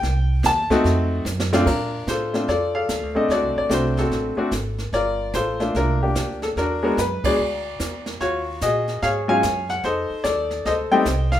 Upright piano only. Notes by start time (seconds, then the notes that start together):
Already playing: G5
0.46 A5
0.70 A3 C4 D#4 F#4
1.52 A#2 A3 C4 D4 F4
1.66 D4 F4 A#4
2.08 F4 A4 C5
2.33 A3 C4 D4 F4
2.49 F4 A4 D5
2.75 A4 D5 F5
3.15 A3 C4 D4 A4 D#5
3.31 F#4 A4 D5
3.58 D5
3.69 A3 C4 D4 F#4 C5
3.99 C4 F#4 A4
4.37 A3 C4 D4 F#4
4.94 F4 A#4 D5
5.35 F4 A4 C5
5.60 A3 A#3 D4 F4
5.76 D4 F4 A#4
6.03 A#3 D4 G4
6.43 A4
6.58 D4 F#4 A#4
6.83 G#3 B3 D4 F#4 A#4
6.99 B4
7.24 G#3 B3 D4 F#4 G#4 D5
8.21 F4 F#4 C#5
8.62 F#4 G#4 D#5
9.03 G#4 C#5 F5
9.28 F#3 G#3 C#4 F4 C#5 F5 G#5
9.70 F#5
9.85 D#4 A4 C5
10.24 A4 D5
10.66 A4 C5 D#5
10.91 G3 A3 C4 D#4 C5 D#5 G5
11.32 F5